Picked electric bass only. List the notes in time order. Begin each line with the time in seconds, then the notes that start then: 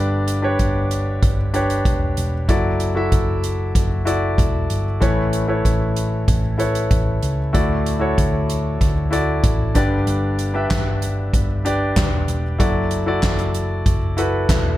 Already playing: G1
0.59 G1
1.23 G1
1.85 E1
2.18 E1
2.49 F#1
3.12 F#1
3.75 F#1
4.38 E1
4.70 G1
5.02 A1
5.65 A1
6.28 A1
6.91 A1
7.23 C#2
7.55 D2
8.18 D2
8.81 D2
9.44 A1
9.75 G1
10.07 G1
10.71 G1
11.33 G1
11.96 E1
12.28 E1
12.59 F#1
13.23 F#1
13.86 F#1
14.49 E1